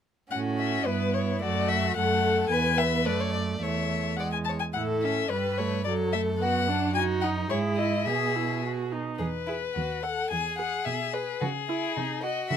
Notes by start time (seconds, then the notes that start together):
0.31 A2 C#4 F#4 F#5
0.59 E5
0.86 G2 B3 E4 B4
1.14 C#5
1.42 F#2 A3 F#4 D5
1.69 E5
1.96 F#2 A3 A4 F#5
2.49 E2 B3 B4 G#5
2.78 E5
3.06 F#2 A3 B4 D5
3.20 C#5
3.33 D5
3.61 E2 A3 C#5 E5
4.17 G#3 D5 F#5
4.32 G#5
4.44 A5
4.49 C#5
4.59 G#5
4.73 A2 E4 A4 F#5
5.03 C#4 E5
5.30 G2 G3 B4
5.57 A3 C#5
5.84 F#2 F#3 A4 D5
6.13 A3 E5
6.40 B3 F#4 F#5
6.68 D4
6.95 D#4 F#4 G#5
7.21 D#4 F#5
7.50 G#2 E4 G#4 C#5
7.77 E4 D#5
8.05 B2 G#4 E5
8.36 E4
8.65 F#4
8.92 D#4
9.18 E2 G#4 B4
9.47 E4 G#4
9.75 D#2 F#4
10.03 A4 F#5
10.30 E2 G#4 G#5
10.58 G#4 F#5
10.85 B2 E5
11.13 G#4 B4
11.40 C#3 F#4 G#4
11.69 E4
11.96 C3 D#4
12.22 F#4 D#5
12.50 C#3 E5